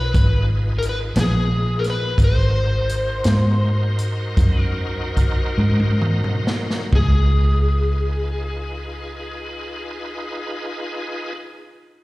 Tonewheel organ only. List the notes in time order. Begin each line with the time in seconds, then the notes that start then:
Already playing: D#4 F4 G#4 B4
2.17 D#4 F#4 A#4 C5
6.93 D#4 F4 G#4 B4